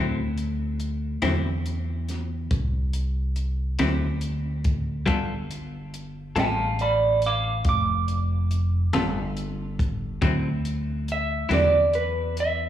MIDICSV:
0, 0, Header, 1, 5, 480
1, 0, Start_track
1, 0, Tempo, 857265
1, 2843, Time_signature, 12, 3, 24, 8
1, 7107, End_track
2, 0, Start_track
2, 0, Title_t, "Clean electric guitar"
2, 0, Program_c, 0, 27
2, 3573, Note_on_c, 0, 77, 69
2, 3582, Note_on_c, 0, 81, 82
2, 3805, Note_off_c, 0, 81, 0
2, 3808, Note_off_c, 0, 77, 0
2, 3814, Note_on_c, 0, 74, 61
2, 3818, Note_on_c, 0, 83, 70
2, 4031, Note_off_c, 0, 74, 0
2, 4043, Note_off_c, 0, 83, 0
2, 4067, Note_on_c, 0, 86, 67
2, 4068, Note_on_c, 0, 77, 73
2, 4279, Note_off_c, 0, 77, 0
2, 4287, Note_off_c, 0, 86, 0
2, 4305, Note_on_c, 0, 86, 87
2, 5231, Note_off_c, 0, 86, 0
2, 6226, Note_on_c, 0, 76, 82
2, 6446, Note_off_c, 0, 76, 0
2, 6457, Note_on_c, 0, 74, 78
2, 6682, Note_off_c, 0, 74, 0
2, 6691, Note_on_c, 0, 71, 72
2, 6919, Note_off_c, 0, 71, 0
2, 6944, Note_on_c, 0, 76, 78
2, 7107, Note_off_c, 0, 76, 0
2, 7107, End_track
3, 0, Start_track
3, 0, Title_t, "Clean electric guitar"
3, 0, Program_c, 1, 27
3, 0, Note_on_c, 1, 50, 77
3, 0, Note_on_c, 1, 54, 75
3, 0, Note_on_c, 1, 60, 81
3, 0, Note_on_c, 1, 64, 85
3, 104, Note_off_c, 1, 50, 0
3, 107, Note_off_c, 1, 54, 0
3, 109, Note_off_c, 1, 60, 0
3, 109, Note_off_c, 1, 64, 0
3, 684, Note_on_c, 1, 64, 71
3, 685, Note_on_c, 1, 60, 67
3, 691, Note_on_c, 1, 54, 58
3, 693, Note_on_c, 1, 50, 61
3, 828, Note_off_c, 1, 60, 0
3, 828, Note_off_c, 1, 64, 0
3, 831, Note_off_c, 1, 54, 0
3, 832, Note_off_c, 1, 50, 0
3, 2124, Note_on_c, 1, 64, 69
3, 2125, Note_on_c, 1, 60, 60
3, 2128, Note_on_c, 1, 54, 56
3, 2131, Note_on_c, 1, 50, 51
3, 2267, Note_off_c, 1, 64, 0
3, 2268, Note_off_c, 1, 60, 0
3, 2269, Note_off_c, 1, 54, 0
3, 2271, Note_off_c, 1, 50, 0
3, 2833, Note_on_c, 1, 55, 77
3, 2834, Note_on_c, 1, 59, 72
3, 2838, Note_on_c, 1, 65, 79
3, 2841, Note_on_c, 1, 69, 78
3, 2982, Note_off_c, 1, 55, 0
3, 2983, Note_off_c, 1, 59, 0
3, 2985, Note_off_c, 1, 65, 0
3, 2986, Note_off_c, 1, 69, 0
3, 3559, Note_on_c, 1, 69, 67
3, 3562, Note_on_c, 1, 65, 62
3, 3567, Note_on_c, 1, 55, 54
3, 3570, Note_on_c, 1, 59, 55
3, 3705, Note_off_c, 1, 69, 0
3, 3706, Note_off_c, 1, 65, 0
3, 3709, Note_off_c, 1, 55, 0
3, 3710, Note_off_c, 1, 59, 0
3, 5002, Note_on_c, 1, 69, 66
3, 5005, Note_on_c, 1, 65, 58
3, 5009, Note_on_c, 1, 59, 51
3, 5013, Note_on_c, 1, 55, 49
3, 5146, Note_off_c, 1, 69, 0
3, 5147, Note_off_c, 1, 65, 0
3, 5149, Note_off_c, 1, 59, 0
3, 5151, Note_off_c, 1, 55, 0
3, 5721, Note_on_c, 1, 54, 76
3, 5723, Note_on_c, 1, 50, 70
3, 5725, Note_on_c, 1, 60, 82
3, 5728, Note_on_c, 1, 64, 81
3, 5865, Note_off_c, 1, 54, 0
3, 5866, Note_off_c, 1, 50, 0
3, 5867, Note_off_c, 1, 60, 0
3, 5868, Note_off_c, 1, 64, 0
3, 6433, Note_on_c, 1, 64, 68
3, 6441, Note_on_c, 1, 54, 57
3, 6442, Note_on_c, 1, 50, 50
3, 6442, Note_on_c, 1, 60, 59
3, 6581, Note_off_c, 1, 64, 0
3, 6585, Note_off_c, 1, 50, 0
3, 6585, Note_off_c, 1, 54, 0
3, 6585, Note_off_c, 1, 60, 0
3, 7107, End_track
4, 0, Start_track
4, 0, Title_t, "Upright bass"
4, 0, Program_c, 2, 32
4, 0, Note_on_c, 2, 38, 75
4, 662, Note_off_c, 2, 38, 0
4, 686, Note_on_c, 2, 40, 86
4, 1383, Note_off_c, 2, 40, 0
4, 1404, Note_on_c, 2, 36, 79
4, 2102, Note_off_c, 2, 36, 0
4, 2124, Note_on_c, 2, 38, 87
4, 2822, Note_off_c, 2, 38, 0
4, 2842, Note_on_c, 2, 31, 73
4, 3540, Note_off_c, 2, 31, 0
4, 3559, Note_on_c, 2, 33, 90
4, 4259, Note_off_c, 2, 33, 0
4, 4281, Note_on_c, 2, 29, 83
4, 4980, Note_off_c, 2, 29, 0
4, 5000, Note_on_c, 2, 31, 86
4, 5699, Note_off_c, 2, 31, 0
4, 5723, Note_on_c, 2, 38, 75
4, 6420, Note_off_c, 2, 38, 0
4, 6439, Note_on_c, 2, 40, 88
4, 7107, Note_off_c, 2, 40, 0
4, 7107, End_track
5, 0, Start_track
5, 0, Title_t, "Drums"
5, 210, Note_on_c, 9, 42, 53
5, 266, Note_off_c, 9, 42, 0
5, 446, Note_on_c, 9, 42, 53
5, 502, Note_off_c, 9, 42, 0
5, 683, Note_on_c, 9, 42, 73
5, 690, Note_on_c, 9, 38, 96
5, 739, Note_off_c, 9, 42, 0
5, 746, Note_off_c, 9, 38, 0
5, 928, Note_on_c, 9, 42, 52
5, 984, Note_off_c, 9, 42, 0
5, 1168, Note_on_c, 9, 42, 54
5, 1175, Note_on_c, 9, 38, 28
5, 1224, Note_off_c, 9, 42, 0
5, 1231, Note_off_c, 9, 38, 0
5, 1404, Note_on_c, 9, 42, 81
5, 1405, Note_on_c, 9, 36, 80
5, 1460, Note_off_c, 9, 42, 0
5, 1461, Note_off_c, 9, 36, 0
5, 1643, Note_on_c, 9, 42, 60
5, 1699, Note_off_c, 9, 42, 0
5, 1881, Note_on_c, 9, 42, 56
5, 1937, Note_off_c, 9, 42, 0
5, 2120, Note_on_c, 9, 42, 79
5, 2127, Note_on_c, 9, 38, 104
5, 2176, Note_off_c, 9, 42, 0
5, 2183, Note_off_c, 9, 38, 0
5, 2358, Note_on_c, 9, 42, 62
5, 2414, Note_off_c, 9, 42, 0
5, 2600, Note_on_c, 9, 42, 61
5, 2603, Note_on_c, 9, 36, 71
5, 2656, Note_off_c, 9, 42, 0
5, 2659, Note_off_c, 9, 36, 0
5, 2842, Note_on_c, 9, 42, 79
5, 2843, Note_on_c, 9, 36, 91
5, 2898, Note_off_c, 9, 42, 0
5, 2899, Note_off_c, 9, 36, 0
5, 3083, Note_on_c, 9, 42, 56
5, 3139, Note_off_c, 9, 42, 0
5, 3325, Note_on_c, 9, 42, 57
5, 3381, Note_off_c, 9, 42, 0
5, 3563, Note_on_c, 9, 42, 76
5, 3570, Note_on_c, 9, 38, 106
5, 3619, Note_off_c, 9, 42, 0
5, 3626, Note_off_c, 9, 38, 0
5, 3802, Note_on_c, 9, 42, 51
5, 3858, Note_off_c, 9, 42, 0
5, 4042, Note_on_c, 9, 42, 52
5, 4098, Note_off_c, 9, 42, 0
5, 4281, Note_on_c, 9, 42, 75
5, 4283, Note_on_c, 9, 36, 74
5, 4337, Note_off_c, 9, 42, 0
5, 4339, Note_off_c, 9, 36, 0
5, 4524, Note_on_c, 9, 42, 51
5, 4580, Note_off_c, 9, 42, 0
5, 4764, Note_on_c, 9, 42, 54
5, 4820, Note_off_c, 9, 42, 0
5, 5002, Note_on_c, 9, 42, 77
5, 5009, Note_on_c, 9, 38, 100
5, 5058, Note_off_c, 9, 42, 0
5, 5065, Note_off_c, 9, 38, 0
5, 5244, Note_on_c, 9, 42, 57
5, 5300, Note_off_c, 9, 42, 0
5, 5483, Note_on_c, 9, 36, 74
5, 5486, Note_on_c, 9, 42, 59
5, 5539, Note_off_c, 9, 36, 0
5, 5542, Note_off_c, 9, 42, 0
5, 5721, Note_on_c, 9, 42, 73
5, 5724, Note_on_c, 9, 36, 101
5, 5777, Note_off_c, 9, 42, 0
5, 5780, Note_off_c, 9, 36, 0
5, 5964, Note_on_c, 9, 42, 61
5, 6020, Note_off_c, 9, 42, 0
5, 6205, Note_on_c, 9, 42, 56
5, 6261, Note_off_c, 9, 42, 0
5, 6445, Note_on_c, 9, 42, 75
5, 6452, Note_on_c, 9, 38, 104
5, 6501, Note_off_c, 9, 42, 0
5, 6508, Note_off_c, 9, 38, 0
5, 6682, Note_on_c, 9, 42, 54
5, 6738, Note_off_c, 9, 42, 0
5, 6926, Note_on_c, 9, 42, 57
5, 6982, Note_off_c, 9, 42, 0
5, 7107, End_track
0, 0, End_of_file